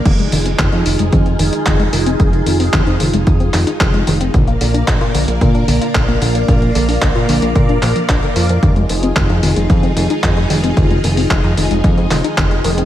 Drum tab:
CC |x---------------|----------------|----------------|----------------|
HH |xxoxxxoxxxoxxxox|xxoo-xoxxxoxxxox|xxoxxxoxxxoxxxox|xxooxxoxxxoxxxox|
CP |----x-------x---|----x-----x-x---|----x-------x---|----x-----x-x---|
BD |o---o---o---o---|o---o---o---o---|o---o---o---o---|o---o---o---o---|

CC |----------------|----------------|
HH |xxoxxxoxxxoxxxox|xxoo-xoxxxoxxxox|
CP |----x-------x---|----x-----x-x---|
BD |o---o---o---o---|o---o---o---o---|